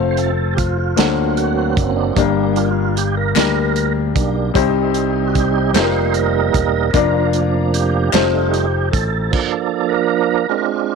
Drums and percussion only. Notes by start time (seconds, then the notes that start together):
0.17 closed hi-hat
0.58 kick, closed hi-hat
0.97 snare, closed hi-hat
1.37 closed hi-hat
1.77 kick, closed hi-hat
2.16 kick, closed hi-hat
2.56 closed hi-hat
2.97 closed hi-hat
3.36 snare, clap, closed hi-hat
3.76 closed hi-hat
4.16 kick, closed hi-hat
4.55 kick, closed hi-hat
4.94 closed hi-hat
5.35 kick, closed hi-hat
5.75 snare, clap, closed hi-hat
6.14 closed hi-hat
6.54 kick, closed hi-hat
6.94 kick, closed hi-hat
7.33 closed hi-hat
7.74 closed hi-hat
8.13 snare, clap, closed hi-hat
8.54 closed hi-hat
8.93 kick, closed hi-hat
9.33 kick, crash